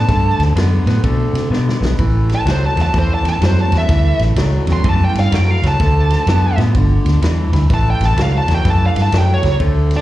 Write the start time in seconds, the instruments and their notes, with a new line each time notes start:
Already playing: lead electric guitar A5
0.08 fingered electric bass G2, clean electric guitar D3 A3, kick, snare, ride
0.39 fingered electric bass D2, snare, ride
0.55 fingered electric bass F#2, clean electric guitar D3 B3, snare, ride
0.85 fingered electric bass A2, clean electric guitar D3 B3, reed electric piano F#3 A3 C4 D4 E4, snare, ride
1.04 fingered electric bass B2, clean electric guitar D3 A3, kick, ride
1.33 fingered electric bass C3, snare, ride
1.50 fingered electric bass B2, clean electric guitar D3 B3, snare
1.69 snare
1.81 fingered electric bass B1, clean electric guitar D3 B3
1.85 snare
1.99 fingered electric bass A1, clean electric guitar A2 E3, kick, ride
2.29 snare, ride
2.35 lead electric guitar A5
2.45 fingered electric bass C#2, clean electric guitar A2 F#3, snare, ride
2.51 lead electric guitar C5
2.66 lead electric guitar A5
2.76 fingered electric bass E2, clean electric guitar A2 F#3, snare, ride
2.82 lead electric guitar A5
2.93 fingered electric bass E2, clean electric guitar A2 E3, kick, snare, ride
2.99 lead electric guitar C5
3.14 lead electric guitar A5
3.23 fingered electric bass E2, snare, ride
3.29 lead electric guitar A5
3.40 fingered electric bass F#2, clean electric guitar A2 F#3, reed electric piano G3 A3 B3 C#4 E4, snare, ride
3.45 lead electric guitar C5
3.60 lead electric guitar A5
3.72 fingered electric bass E2, clean electric guitar A2 F#3, snare, ride
3.78 lead electric guitar E5
3.89 fingered electric bass D2, clean electric guitar A2 E3, kick, snare, ride
4.19 fingered electric bass A1, snare, ride
4.36 fingered electric bass C#2, clean electric guitar A2 F#3, snare, ride
4.66 fingered electric bass E2, clean electric guitar A2 F#3, reed electric piano G3 A3 B3 C#4 E4, snare, ride
4.73 lead electric guitar C6
4.84 fingered electric bass F#2, clean electric guitar A2 E3, kick, ride
4.89 lead electric guitar A5
5.05 lead electric guitar G5
5.15 fingered electric bass G2, snare, ride
5.20 lead electric guitar F5
5.31 fingered electric bass F#2, clean electric guitar A2 F#3, lead electric guitar G5, snare, ride
5.51 lead electric guitar F5
5.62 fingered electric bass C#2, clean electric guitar A2 F#3, snare, ride
5.68 lead electric guitar A5
5.80 fingered electric bass D2, clean electric guitar D3 A3, kick, snare, ride
6.10 snare, ride
6.26 fingered electric bass F#2, clean electric guitar D3 B3, snare, ride
6.57 fingered electric bass A2, clean electric guitar D3 B3, reed electric piano G3 A3 B3 D4 F4, snare, ride
6.75 fingered electric bass G1, clean electric guitar G2 D3, kick, ride
7.05 fingered electric bass D2, snare, ride
7.22 fingered electric bass E2, clean electric guitar G2 E3, snare, ride
7.52 fingered electric bass D2, clean electric guitar G2 E3, snare, ride
7.70 fingered electric bass A1, clean electric guitar A2 E3, kick, snare, ride
7.74 lead electric guitar A5
7.90 lead electric guitar G5
8.00 fingered electric bass A1, snare, ride
8.05 lead electric guitar A5
8.17 fingered electric bass C#2, clean electric guitar A2 F#3, snare, ride
8.22 lead electric guitar F5
8.38 lead electric guitar A5
8.47 fingered electric bass E2, clean electric guitar A2 F#3, snare, ride
8.55 lead electric guitar G5
8.65 fingered electric bass F#2, clean electric guitar A2 E3, kick, snare, ride
8.70 lead electric guitar A5
8.86 lead electric guitar F5
8.95 fingered electric bass G2, snare, ride
9.02 lead electric guitar A5
9.12 fingered electric bass F#2, clean electric guitar A2 F#3, snare, ride
9.18 lead electric guitar G5
9.34 lead electric guitar C#5
9.43 fingered electric bass C#2, clean electric guitar A2 F#3, snare, ride
9.60 fingered electric bass D2, clean electric guitar D3 A3, kick, ride
9.91 snare, ride
9.96 lead electric guitar D4